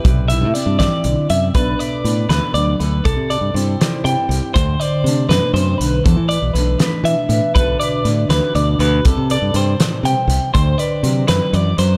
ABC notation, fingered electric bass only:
X:1
M:6/8
L:1/16
Q:3/8=80
K:Clyd
V:1 name="Fingered electric bass" clef=bass
B,,,3 A,, z G,,2 z B,,, z F,,2 | B,,,2 z2 A,,2 D,, z D,,2 D,,2 | C,, C,2 G,, G,,2 z2 C, z C,, z | D,,2 z2 C,2 F,, z F,,2 B,,,2 |
E,, E,2 B,,, B,,,2 z2 E, z A,, z | B,,,2 z2 A,,2 D,, z D,,2 D,,2 | C,, C,2 G,, G,,2 z2 C, z C,, z | D,,2 z2 C,2 F,, z F,,2 F,,2 |]